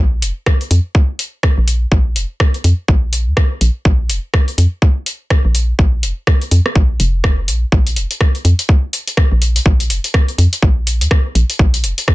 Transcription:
0.00 A#1
0.22 F1, open hi-hat
0.46 kick, cross-stick
0.61 open hi-hat
0.71 F2, open hi-hat
0.95 kick
1.19 open hi-hat
1.43 kick, cross-stick
1.58 A#1
1.68 open hi-hat
1.92 A#1, kick
2.16 F1, open hi-hat
2.40 kick, cross-stick
2.54 open hi-hat
2.64 F2, open hi-hat
2.88 A#1, kick
3.13 open hi-hat
3.27 D#2
3.37 kick, cross-stick
3.61 A#1, open hi-hat
3.85 A#1, kick
4.09 F1, open hi-hat
4.34 kick, cross-stick
4.48 open hi-hat
4.58 F2, open hi-hat
4.82 kick
5.06 open hi-hat
5.30 kick, cross-stick
5.45 A#1
5.55 open hi-hat
5.79 A#1, kick
6.03 F1, open hi-hat
6.27 kick, cross-stick
6.42 open hi-hat
6.51 F2, open hi-hat
6.66 cross-stick
6.76 A#1, kick
7.00 F1, open hi-hat
7.24 kick, cross-stick
7.48 A#1, open hi-hat
7.72 A#1, kick
7.87 closed hi-hat
7.96 F1, open hi-hat
8.11 closed hi-hat
8.21 kick, cross-stick
8.35 open hi-hat
8.45 F2, open hi-hat
8.59 closed hi-hat
8.69 kick
8.93 open hi-hat
9.08 closed hi-hat
9.17 kick, cross-stick
9.32 A#1
9.42 open hi-hat
9.56 closed hi-hat
9.66 A#1, kick
9.80 closed hi-hat
9.90 F1, open hi-hat
10.04 closed hi-hat
10.14 kick, cross-stick
10.28 open hi-hat
10.38 F2, open hi-hat
10.53 closed hi-hat
10.62 A#1, kick
10.87 open hi-hat
11.01 D#2, closed hi-hat
11.11 kick, cross-stick
11.35 A#1, open hi-hat
11.50 closed hi-hat
11.59 A#1, kick
11.74 closed hi-hat
11.84 F1, open hi-hat
11.98 closed hi-hat
12.08 kick, cross-stick

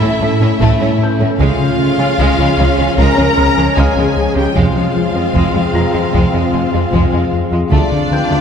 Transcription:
Already playing: A3 C#4 E4 A4 E5 G6 A6
0.01 A2 C#4 A4
0.20 A1 A2 A3 A4
0.40 A2 C#4
0.59 A1 A2 A3, taiko
0.79 A2 C#4 A4
0.98 A2
1.04 G6
1.19 A2 C#4 A4
1.38 C#2 C#3 F3 G#3 C#4 F4 G#4 C#5 F5, taiko
1.58 C#3
1.79 C#3
1.98 C#3 G#3
2.17 C#2 C#3 G#3, taiko
2.38 C#2 C#3 F3 G#3
2.58 C#2 C#3 G#3 C#4
2.78 C#2 C#3 G#3 C#4
2.98 C#2 C#3 G#3 A#4 A#5, taiko
3.17 C#2 C#3 G#3 C#4
3.37 C#2 C#3 G#3 C#4
3.56 C#2 C#3 F3 G#3
3.76 C#2 C#3 G#3 G#4 F5 G#5 F6, taiko
3.96 C#2 C#3 G#3 C#4
4.17 C#2
4.35 C#2 C#3 G#3 C#4 G4 G5
4.55 F1 F2 F3 G#3 C4 F4 F5, taiko
4.75 F3
4.95 F3
5.15 F2 F3 G#3 C4
5.34 F1 F2 F3 G#3, taiko
5.54 F2 G#3
5.73 F1 F2 G#3 F4 A#5 A#6
5.93 F2 G#3 F4
6.13 F1 F2 F3 G#3, taiko
6.33 F2 G#3 F4
6.53 F1 F2 G#3 F4
6.72 F2 G#3
6.92 F1 F2 F3 G#3, taiko
7.11 F2 G#3 F4
7.33 F2
7.52 F2 G#3 F4
7.71 D2 D3 A3 D4 F4 D5, taiko
7.92 D3
8.12 D3 G5 G6
8.30 D2 D3 A3

